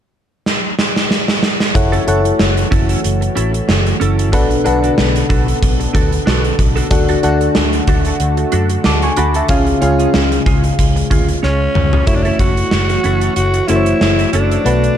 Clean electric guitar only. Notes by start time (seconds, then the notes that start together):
1.75 muted clean electric guitar stroke
1.92 C#4 E4 A4
2.07 C#4 E4 A4
2.25 muted clean electric guitar stroke
2.39 muted clean electric guitar stroke
2.56 muted clean electric guitar stroke
2.71 C#4 E4 A4
2.89 C#4 E4 A4
3.04 muted clean electric guitar stroke
3.21 muted clean electric guitar stroke
3.35 C#4 E4 A4
3.53 muted clean electric guitar stroke
3.68 muted clean electric guitar stroke
3.86 muted clean electric guitar stroke
4.00 C#4 E4 A4
4.18 C#4 E4 A4
4.32 D4 F#4 A4
4.64 D4 F#4 A4
4.83 D4 F#4 A4
5.15 muted clean electric guitar stroke
5.29 D4 F#4 A4
5.47 muted clean electric guitar stroke
5.80 muted clean electric guitar stroke
5.93 D4 F#4 A4
6.12 muted clean electric guitar stroke
6.26 D4 F#4 A4
6.44 muted clean electric guitar stroke
6.58 muted clean electric guitar stroke
6.76 D4 F#4 A4
6.91 muted clean electric guitar stroke
7.09 D4 F#4 A4
7.24 D4 F#4 A4
7.41 muted clean electric guitar stroke
7.56 muted clean electric guitar stroke
7.74 muted clean electric guitar stroke
7.88 D4 F#4 A4
8.06 D4 F#4 A4
8.21 muted clean electric guitar stroke
8.38 muted clean electric guitar stroke
8.52 D4 F#4 A4
8.71 muted clean electric guitar stroke
8.85 muted clean electric guitar stroke
9.03 muted clean electric guitar stroke
9.17 D4 F#4 A4
9.35 D4 F#4 A4
9.49 C#4 F4 G#4
9.81 C#4 F4 G#4
9.99 C#4 F4 G#4
10.31 muted clean electric guitar stroke
10.46 C#4 F4 G#4
10.64 muted clean electric guitar stroke
10.96 muted clean electric guitar stroke
11.11 C#4 F4 G#4
11.28 muted clean electric guitar stroke
11.43 C#4 F4 G#4
11.61 muted clean electric guitar stroke
11.75 muted clean electric guitar stroke
11.93 C#4 F4 G#4
12.25 C#4 E4 A4
12.40 C#4 E4 A4
12.58 muted clean electric guitar stroke
12.72 muted clean electric guitar stroke
12.90 muted clean electric guitar stroke
13.04 C#4 E4 A4
13.22 C#4 E4 A4
13.54 muted clean electric guitar stroke
13.69 C#4 E4 A4
13.87 muted clean electric guitar stroke
14.01 muted clean electric guitar stroke
14.19 muted clean electric guitar stroke
14.33 C#4 E4 A4
14.51 C#4 E4 A4
14.66 D4 F#4 A4